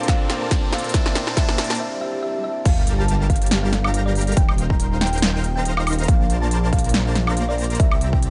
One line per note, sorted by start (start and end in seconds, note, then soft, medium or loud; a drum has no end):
0.00 0.92 A#3 medium
0.00 0.06 C4 medium
0.00 0.08 D4 medium
0.00 0.92 D4 medium
0.00 0.09 F4 medium
0.00 0.75 A4 medium
0.00 1.77 C5 loud
0.00 0.10 A5 medium
0.00 0.92 A5 medium
0.00 closed hi-hat medium
0.00 riser medium
0.06 0.92 A#3 medium
0.06 0.69 C4 medium
0.06 0.70 D4 medium
0.06 0.71 F4 medium
0.06 0.93 A#4 medium
0.06 0.92 C5 medium
0.06 0.92 D5 medium
0.06 0.38 F5 loud
0.06 0.92 A5 loud
0.06 kick loud
0.06 snare medium
0.06 closed hi-hat medium
0.10 0.71 A5 loud
0.30 snare medium
0.30 closed hi-hat medium
0.42 0.70 A5 medium
0.51 kick loud
0.51 snare medium
0.51 closed hi-hat medium
0.71 0.91 C4 medium
0.71 0.92 D4 medium
0.71 0.93 F4 medium
0.71 0.94 A4 loud
0.71 0.93 F5 medium
0.71 snare medium
0.71 closed hi-hat soft
0.78 closed hi-hat medium
0.84 closed hi-hat medium
0.89 1.34 C4 medium
0.89 closed hi-hat medium
0.94 1.79 A#3 medium
0.94 1.35 A#3 medium
0.94 1.35 D4 medium
0.94 1.79 E4 medium
0.94 1.36 E4 medium
0.94 1.35 A#4 medium
0.94 1.35 C5 medium
0.94 1.35 D5 medium
0.94 1.24 E5 medium
0.94 1.35 A5 medium
0.94 1.36 A5 loud
0.94 kick loud
0.94 snare loud
0.94 closed hi-hat medium
1.06 snare medium
1.15 snare medium
1.15 closed hi-hat medium
1.27 1.35 A5 medium
1.27 snare medium
1.35 1.78 A#3 medium
1.35 1.77 C4 medium
1.35 1.78 D4 medium
1.35 1.79 E4 medium
1.35 1.78 A#4 medium
1.35 1.78 C5 medium
1.35 1.78 D5 medium
1.35 1.67 E5 loud
1.35 1.78 A5 loud
1.35 kick loud
1.35 snare loud
1.35 closed hi-hat medium
1.39 1.79 A5 loud
1.49 snare medium
1.58 snare loud
1.58 closed hi-hat medium
1.64 closed hi-hat medium
1.70 1.78 A5 medium
1.70 snare medium
1.70 closed hi-hat medium
1.75 closed hi-hat medium
1.80 2.00 E5 loud
1.80 swell medium
2.01 2.21 E5 loud
2.23 2.43 E5 loud
2.44 2.64 E5 loud
2.65 4.35 G1 medium
2.65 3.70 G3 medium
2.65 3.70 G4 medium
2.65 3.70 A#4 medium
2.65 2.95 F5 loud
2.65 3.70 F5 medium
2.65 3.70 A5 loud
2.65 kick loud
2.65 closed hi-hat medium
2.65 crash loud
2.65 sub drop medium
2.87 closed hi-hat medium
2.99 3.27 A5 loud
3.08 closed hi-hat medium
3.30 3.59 F5 medium
3.30 kick medium
3.30 closed hi-hat medium
3.36 closed hi-hat medium
3.42 closed hi-hat medium
3.46 closed hi-hat medium
3.51 snare loud
3.51 closed hi-hat medium
3.63 3.82 F5 loud
3.73 snare medium
3.73 closed hi-hat medium
3.84 4.35 G3 medium
3.84 4.35 G4 medium
3.84 4.35 A#4 medium
3.84 4.03 F5 medium
3.84 4.35 F5 medium
3.84 4.35 A#5 loud
3.84 high woodblock medium
3.94 closed hi-hat medium
4.06 4.34 D5 loud
4.15 open hi-hat medium
4.21 closed hi-hat medium
4.27 closed hi-hat medium
4.32 closed hi-hat medium
4.37 6.06 D#1 medium
4.37 5.42 D#4 medium
4.37 5.42 A#4 medium
4.37 5.42 C5 medium
4.37 5.42 F5 medium
4.37 4.66 G5 loud
4.37 5.42 G5 loud
4.37 kick loud
4.37 closed hi-hat medium
4.49 high woodblock medium
4.58 closed hi-hat medium
4.70 4.98 A#5 loud
4.70 kick medium
4.80 closed hi-hat medium
5.01 5.31 G5 medium
5.01 snare medium
5.01 closed hi-hat soft
5.07 closed hi-hat medium
5.13 closed hi-hat medium
5.18 closed hi-hat medium
5.22 snare loud
5.22 closed hi-hat medium
5.34 5.53 G5 medium
5.44 closed hi-hat medium
5.56 6.06 D#4 loud
5.56 6.06 A#4 medium
5.56 6.06 C5 medium
5.56 6.06 F5 medium
5.56 5.75 G5 medium
5.56 6.06 A#5 loud
5.65 closed hi-hat medium
5.77 6.05 F5 loud
5.77 high woodblock medium
5.87 open hi-hat medium
5.87 high woodblock medium
5.93 closed hi-hat medium
5.99 closed hi-hat medium
6.03 closed hi-hat medium
6.08 7.78 A#1 medium
6.08 7.13 A#3 medium
6.08 7.13 A#4 medium
6.08 7.13 C5 medium
6.08 7.13 D5 medium
6.08 6.38 F5 loud
6.08 7.13 A5 loud
6.08 kick loud
6.08 closed hi-hat medium
6.30 closed hi-hat medium
6.42 6.70 A5 medium
6.51 closed hi-hat medium
6.73 7.02 F5 medium
6.73 kick medium
6.73 closed hi-hat soft
6.79 closed hi-hat medium
6.84 closed hi-hat medium
6.89 closed hi-hat medium
6.94 snare loud
6.94 closed hi-hat medium
7.06 7.25 F5 medium
7.15 snare medium
7.15 closed hi-hat medium
7.27 7.77 A#3 loud
7.27 7.77 A#4 medium
7.27 7.77 C5 loud
7.27 7.77 D5 loud
7.27 7.46 F5 medium
7.27 7.77 A#5 loud
7.27 high woodblock medium
7.37 closed hi-hat medium
7.49 7.77 D5 loud
7.58 open hi-hat medium
7.64 closed hi-hat medium
7.70 closed hi-hat medium
7.75 closed hi-hat medium
7.80 8.30 C2 medium
7.80 8.30 C4 medium
7.80 8.30 G4 medium
7.80 8.30 D5 medium
7.80 8.30 E5 medium
7.80 8.09 E5 loud
7.80 8.30 A#5 loud
7.80 kick loud
7.80 closed hi-hat medium
7.92 high woodblock medium
8.01 closed hi-hat medium
8.13 8.30 G5 loud
8.13 kick medium
8.23 closed hi-hat medium